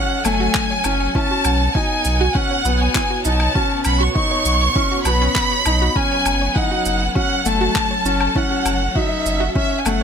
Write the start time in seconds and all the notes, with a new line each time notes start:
Already playing: F#3 C#4 A4 F#5
0.25 F#1 A3 G#5, low woodblock, shaker
0.40 F#4
0.55 kick, clap
0.71 C#5
0.84 F#1 C#4, low woodblock, shaker
1.00 C#5
1.15 B2 C#4 E4 A5, kick
1.31 B3 F#4
1.45 B1 F#5, low woodblock, shaker
1.75 D#4 F#4 G#5, kick
2.05 B1, shaker
2.21 F#4
2.35 C#4 F#5, kick
2.41 C#5
2.51 C#5
2.65 B1 B3, shaker
2.81 C#5 G#5
2.95 E4, kick, clap
3.10 F#4
3.25 B1 D#4 F#5 A5, shaker
3.40 low woodblock
3.55 C#4 F#4, kick
3.85 B1 B5, low woodblock, shaker
4.00 F#4 C#6
4.15 D#4 C#6, kick
4.31 C#5
4.45 B1, shaker
4.61 C#5
4.76 C#4 E4, kick
4.92 F#4
5.05 B1 B3 F#4 B5, low woodblock, shaker
5.22 C#4
5.35 B4, kick, clap
5.52 C#5
5.66 B1 D#4, low woodblock, shaker
5.82 F#4
5.96 F#3 C#4 G#5, kick
6.12 C#5
6.22 F#1 C#4, low woodblock, shaker
6.42 A4 C#5
6.55 D#4 E4 F#5, kick
6.71 F#4
6.85 F#1 F#5, shaker
7.15 C#4 F#4 F#5, kick
7.45 F#1 A3 A5, shaker
7.61 F#4
7.76 kick, clap
7.91 C#5
8.05 F#1 C#4, shaker
8.21 C#5, low woodblock
8.36 C#4 E4 F#5, kick
8.51 F#4
8.65 F#1 F#5, low woodblock, shaker
8.96 D#4 F#4 E5, kick
9.26 F#1, shaker
9.40 F#4
9.56 C#4 E5, kick
9.71 C#5
9.79 G#5
9.85 F#1 A3 F#5, low woodblock, shaker